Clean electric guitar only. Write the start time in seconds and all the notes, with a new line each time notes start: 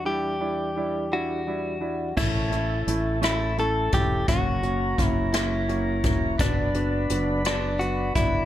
0.06 G4
1.13 F#4
2.18 E4
3.24 E4
3.60 A4
3.94 G4
4.29 F#4
5.05 E4
5.34 E4
6.41 D4
7.47 D4
7.79 F#4
8.16 E4